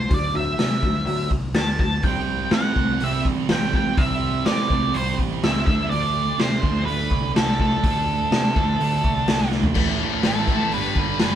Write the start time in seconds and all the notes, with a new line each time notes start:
Already playing: C5
0.09 D2 D3 F#3, kick, open hi-hat
0.14 D5
0.34 D3 F#3 A3 E5
0.58 C3 D3 F#3, snare, open hi-hat
0.82 D2 D3 F#3, kick
1.06 D2 D3 F#3 A3, open hi-hat
1.29 C2 D3 F#3, kick
1.54 D2 D3 F#3 A5, snare, open hi-hat
1.79 D3 F#3 A5, kick
2.03 C2 C3 G3 C4 G5, kick, open hi-hat
2.51 A2 C3 G3 C4 F#5, snare, open hi-hat
2.76 C2 C3 G3 C4, kick
3.00 C2 C3 G3 C4 E5, open hi-hat
3.25 A1, kick
3.49 A1 C3 G3 C4 G5, snare, open hi-hat
3.73 C3 G3 C4 G5, kick
3.97 C2 C3 G3 C4 E5, kick, open hi-hat
4.46 A2 C3 G3 C4 D5, snare, open hi-hat
4.69 C2 C3 G3 C4, kick
4.94 C2 C3 G3 C4 C5, open hi-hat
5.19 A1, kick
5.42 C#2 C3 G3 C4 E5, snare, open hi-hat
5.66 D2 D3 A3 D4 E5, kick
5.89 D2 D3 D5, open hi-hat
5.93 A3 D4
6.38 C3 D3 A3 D4 C5, snare, open hi-hat
6.63 D2 D3 A3 D4, kick
6.85 D2 D3 A3 D4 B4, open hi-hat
7.11 C2, kick
7.34 C2 D3 A3 D4 A4, snare, open hi-hat
7.60 D3 A3 D4 A4, kick
7.83 D2 D3 A3 D4, kick, open hi-hat
8.31 C3 D3 A3 D4, snare, open hi-hat
8.56 D2 D3 A3 D4, kick
8.80 D2 D3 A3 D4, open hi-hat
9.04 C2, kick
9.28 C2 D3 A3 D4, snare, open hi-hat
9.52 D3 A3 D4, snare
9.63 floor tom
9.75 A1 A2 E3 A3, kick, crash
10.01 A1 A2 E3 A3
10.23 A1 A2 E3 A3, snare, open hi-hat
10.27 A4
10.47 A1 A2 E3 A3, kick, snare
10.71 G1 G2 D3 G3 B4, open hi-hat
10.95 G1 G2 D3 G3, kick
11.19 F#1 G2 D3 G3, snare, open hi-hat